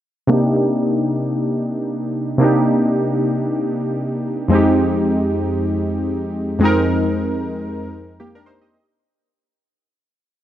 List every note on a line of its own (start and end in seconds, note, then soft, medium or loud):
0.27 2.35 C3 medium
0.27 2.36 A#3 medium
0.27 2.37 D4 medium
0.32 2.38 D#4 medium
0.32 2.38 G4 medium
2.38 4.46 C3 medium
2.38 4.47 A#3 medium
2.38 4.47 D4 medium
2.42 4.48 D#4 medium
2.42 4.49 G4 medium
4.48 6.56 F2 medium
4.48 6.57 G#3 medium
4.48 6.58 C4 medium
4.53 6.59 D#4 medium
4.53 6.59 G4 medium
6.59 8.67 F2 medium
6.59 8.68 G#3 medium
6.59 8.17 C4 medium
6.64 8.17 D#4 medium
6.64 8.18 A#4 medium
8.20 8.35 A#3 medium
8.20 8.34 G4 medium
8.35 8.46 D4 medium
8.35 8.46 A#4 medium
8.46 8.61 D#4 medium
8.46 8.61 C5 medium
8.61 8.87 G4 medium
8.61 8.86 D#5 medium